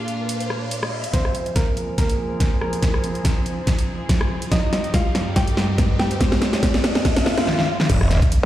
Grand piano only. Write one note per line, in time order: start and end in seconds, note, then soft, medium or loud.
0.00 1.06 F5 medium
1.14 1.51 C4 medium
1.14 1.51 C5 medium
1.56 1.93 A#3 medium
1.56 1.93 A#4 medium
1.98 2.54 A#3 medium
1.98 2.54 A#4 medium
2.61 4.44 A#3 medium
2.61 4.44 A#4 medium
4.52 4.89 D#4 medium
4.52 4.89 D#5 medium
4.94 5.31 F4 medium
4.94 5.31 F5 medium
5.36 5.92 G4 medium
5.36 5.92 G5 loud
5.99 7.47 G4 medium
5.99 7.47 G5 loud